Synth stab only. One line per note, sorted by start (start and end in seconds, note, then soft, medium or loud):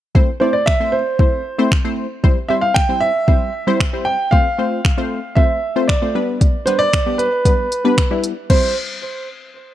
0.15 0.30 A3 medium
0.15 0.30 C4 medium
0.15 0.30 E4 medium
0.15 0.30 C5 loud
0.41 0.63 A3 medium
0.41 0.63 C4 medium
0.41 0.63 E4 medium
0.41 0.63 D5 medium
0.80 1.02 A3 medium
0.80 1.02 C4 medium
0.80 1.03 E4 medium
0.80 1.03 C5 medium
1.19 1.42 A3 medium
1.19 1.42 C4 medium
1.19 1.42 E4 medium
1.19 1.42 C5 medium
1.58 1.73 A3 medium
1.58 1.73 C4 medium
1.58 1.73 E4 medium
1.58 1.74 C5 medium
1.84 2.07 A3 medium
1.84 2.07 C4 medium
1.84 2.07 E4 medium
1.84 2.07 C5 medium
2.24 2.38 G3 medium
2.24 2.39 C4 medium
2.24 2.39 E4 medium
2.24 2.39 C5 loud
2.50 2.72 G3 medium
2.50 2.72 C4 medium
2.50 2.72 E4 medium
2.50 2.72 C5 medium
2.89 3.11 G3 medium
2.89 3.11 C4 medium
2.89 3.11 E4 medium
2.89 3.11 C5 medium
3.28 3.50 G3 medium
3.28 3.50 C4 medium
3.28 3.50 E4 medium
3.28 3.50 C5 medium
3.67 3.82 G3 medium
3.67 3.82 C4 medium
3.67 3.82 E4 medium
3.67 3.82 C5 loud
3.93 4.15 G3 medium
3.93 4.16 C4 medium
3.93 4.16 E4 medium
3.93 4.16 C5 medium
4.32 4.47 A3 medium
4.32 4.47 C4 medium
4.32 4.47 F4 medium
4.32 4.47 C5 medium
4.58 4.81 A3 medium
4.58 4.81 C4 medium
4.58 4.81 F4 medium
4.58 4.81 C5 medium
4.97 5.20 A3 medium
4.97 5.20 C4 medium
4.97 5.20 F4 medium
4.97 5.20 C5 loud
5.37 5.59 A3 medium
5.37 5.59 C4 medium
5.37 5.59 F4 medium
5.37 5.59 C5 medium
5.76 5.91 A3 medium
5.76 5.91 C4 medium
5.76 5.91 F4 medium
5.76 5.91 C5 medium
6.02 6.15 A3 medium
6.02 6.15 C4 medium
6.02 6.15 F4 medium
6.02 6.15 C5 medium
6.15 6.57 G3 medium
6.15 6.57 B3 medium
6.15 6.57 D4 medium
6.15 6.57 B4 medium
6.67 6.89 G3 medium
6.67 6.89 B3 medium
6.67 6.90 D4 medium
6.67 6.90 B4 medium
7.06 7.28 G3 medium
7.06 7.29 B3 medium
7.06 7.29 D4 medium
7.06 7.29 G4 medium
7.45 7.68 G3 medium
7.45 7.68 B3 medium
7.45 7.68 D4 medium
7.45 7.68 B4 medium
7.85 7.99 G3 medium
7.85 7.99 B3 medium
7.85 8.00 D4 medium
7.85 8.00 B4 loud
8.11 8.33 G3 medium
8.11 8.33 B3 medium
8.11 8.33 D4 medium
8.11 8.33 E4 medium
8.50 8.74 G3 medium
8.50 8.74 C4 medium
8.50 8.74 E4 medium
8.50 8.74 C5 medium